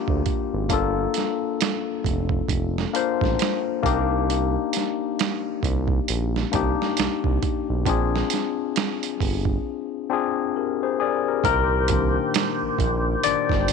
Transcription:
Already playing: tine electric piano A#3 D4 F4 G4
0.08 analog synth bass D2, kick
0.26 kick, closed hi-hat
0.53 analog synth bass G#1
0.69 analog synth bass G1, tine electric piano A#3 D4 F4 A4, kick, closed hi-hat
1.14 snare, closed hi-hat
1.61 snare, closed hi-hat
2.04 analog synth bass F1, kick, closed hi-hat
2.29 kick
2.49 analog synth bass F1, kick, closed hi-hat
2.78 snare
2.93 tine electric piano A#3 D4 F4 C5, closed hi-hat
3.21 analog synth bass A1, kick, snare
3.39 snare, closed hi-hat
3.82 analog synth bass C2, tine electric piano A#3 D4 D#4 G4, kick, closed hi-hat
4.30 closed hi-hat
4.73 snare, closed hi-hat
5.19 snare, closed hi-hat
5.63 analog synth bass C2, kick, closed hi-hat
5.88 kick
6.08 analog synth bass A#1, closed hi-hat
6.36 snare
6.52 analog synth bass C2, tine electric piano A#3 D4 D#4 G4, kick, closed hi-hat
6.82 snare
6.97 analog synth bass C2, snare, closed hi-hat
7.24 analog synth bass C2, kick
7.43 kick, closed hi-hat
7.70 analog synth bass B1
7.86 analog synth bass A#1, tine electric piano C4 D4 F4 G#4, kick, closed hi-hat
8.16 snare
8.30 snare, closed hi-hat
8.76 snare, closed hi-hat
9.03 closed hi-hat
9.20 analog synth bass G1, kick, open hi-hat
9.45 kick
10.09 tine electric piano C4 D4 F4 G#4
10.56 tine electric piano G4 A#4
10.83 tine electric piano G#4 C5
11.00 tine electric piano G#4 A#4 D5
11.28 tine electric piano G4 A#4
11.44 analog synth bass C2, tonewheel organ A#2 D#3 G4 C5, tine electric piano A#4, kick, closed hi-hat
11.88 tine electric piano D#3 A#3 D4, kick, closed hi-hat
12.34 snare, closed hi-hat
12.62 analog synth bass A#1
12.79 analog synth bass A#1, kick, closed hi-hat
13.23 analog synth bass G1, tine electric piano D#3 A#3 D4 D5, closed hi-hat
13.49 analog synth bass G1, kick, snare
13.68 closed hi-hat

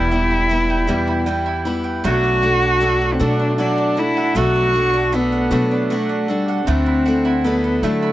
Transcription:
Already playing: upright bass E1, steel-string acoustic guitar E2 B2 E3 G3 B3, mandolin G3 E4 B4 G5, cello E4
0.11 steel-string acoustic guitar E3 G3 B3 E4, mandolin G5
0.31 mandolin E4
0.49 steel-string acoustic guitar E3 G3 B3 E4, mandolin B4
0.70 mandolin G5
0.87 upright bass E2, steel-string acoustic guitar E2 B2 E3 G3 B3 E4, mandolin G3 G5
1.07 mandolin E4
1.26 steel-string acoustic guitar E3 G3 B3 E4, mandolin G5
1.46 mandolin E4
1.65 steel-string acoustic guitar E3 G3 B3 E4, mandolin B4
1.84 mandolin G5
2.04 upright bass B1, steel-string acoustic guitar B2 F#3 A3 D4 F#4, mandolin A3 F#5, cello F#4
2.24 mandolin D4
2.42 steel-string acoustic guitar A3 D4 F#4, mandolin F#5
2.62 mandolin D4
2.80 steel-string acoustic guitar F#3 A3 D4 F#4, mandolin A4
3.01 mandolin F#5
3.14 cello C4
3.19 upright bass B2, steel-string acoustic guitar B2 F#3 A3 D4 F#4, mandolin A3 F#5, cello D4
3.40 mandolin D4
3.58 steel-string acoustic guitar F#3 A3 D4 F#4, cello D4, mandolin F#5
3.78 mandolin D4
3.97 steel-string acoustic guitar A3 D4 F#4, cello E4, mandolin A4
4.17 mandolin F#5
4.35 upright bass B1, steel-string acoustic guitar B2 F#3 A3 D4 F#4, mandolin A3 F#5, cello F#4
4.55 mandolin D4
4.74 steel-string acoustic guitar A3 D4 F#4, mandolin F#5
4.94 mandolin D4
5.12 steel-string acoustic guitar F#3 A3 D4 F#4, cello B3, mandolin A4
5.32 mandolin F#5
5.51 upright bass B2, steel-string acoustic guitar B2 F#3 A3 D4 F#4, mandolin A3 F#5
5.71 mandolin D4
5.90 steel-string acoustic guitar F#3 A3 D4 F#4, cello A3, mandolin F#5
6.09 mandolin D4
6.28 cello G3, steel-string acoustic guitar A3 D4 F#4, mandolin A4
6.48 mandolin F#5
6.67 upright bass D2, steel-string acoustic guitar D3 F#3 A3 D4 E4, mandolin A3 F#5, cello C4
6.86 mandolin E4
7.06 steel-string acoustic guitar A3 D4 E4, mandolin F#5
7.25 mandolin E4
7.44 steel-string acoustic guitar F#3 A3 D4 E4, cello B3, mandolin A4
7.64 mandolin F#5
7.83 upright bass D3, steel-string acoustic guitar D3 F#3 A3 D4 E4, mandolin A3 F#5, cello A3
8.03 mandolin E4

